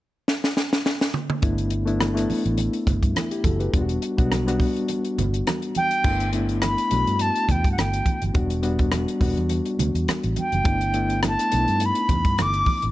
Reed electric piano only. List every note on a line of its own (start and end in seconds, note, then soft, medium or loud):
1.42 1.84 A3 medium
1.42 1.84 B3 medium
1.42 1.84 D4 medium
1.42 1.85 E4 medium
1.85 2.13 A3 medium
1.85 2.14 B3 medium
1.85 2.14 D4 medium
1.85 2.14 E4 medium
2.14 3.23 A3 medium
2.14 3.24 B3 medium
2.14 3.24 D4 medium
2.14 3.14 E4 medium
3.15 3.30 E4 medium
3.31 3.44 E4 medium
3.31 3.44 G4 medium
3.44 3.60 F#4 soft
3.44 3.59 A4 medium
3.60 3.88 G4 medium
3.60 3.87 B4 medium
3.73 4.15 G3 medium
3.73 4.15 B3 medium
3.73 4.15 D4 medium
3.73 3.81 F4 medium
3.81 4.17 F#4 medium
4.17 4.45 G3 medium
4.17 4.45 B3 medium
4.17 4.45 D4 medium
4.17 4.45 F#4 medium
4.46 5.55 G3 medium
4.46 5.55 B3 medium
4.46 5.55 D4 medium
4.46 5.56 F#4 medium
6.03 6.31 A3 medium
6.03 6.32 B3 medium
6.03 6.32 D4 medium
6.03 6.32 E4 medium
6.32 6.87 A3 medium
6.32 6.88 B3 medium
6.32 6.88 D4 medium
6.32 6.88 E4 medium
6.91 8.00 A3 medium
6.91 8.00 B3 medium
6.91 8.01 D4 medium
6.91 8.01 F#4 medium
8.34 8.61 G3 medium
8.34 8.61 B3 medium
8.34 8.62 D4 medium
8.34 8.62 F#4 medium
8.62 9.18 G3 medium
8.62 9.18 B3 medium
8.62 9.18 D4 medium
8.62 9.18 F#4 medium
9.20 10.30 G3 medium
9.20 10.30 B3 medium
9.20 10.30 D4 medium
9.20 10.31 F#4 medium
10.63 10.92 A3 medium
10.63 10.92 B3 medium
10.63 10.92 D4 medium
10.63 10.93 E4 medium
10.94 11.49 A3 medium
10.94 11.49 B3 medium
10.94 11.49 D4 medium
10.94 11.49 E4 medium
11.50 12.60 A3 medium
11.50 12.60 B3 medium
11.50 12.61 D4 medium
11.50 11.59 D#4 medium
11.58 12.64 E4 medium